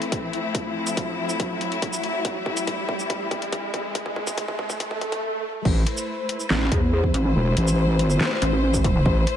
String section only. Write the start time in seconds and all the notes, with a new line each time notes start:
Already playing: A2 A3 C4 E4
5.65 A3 E4 B4 C5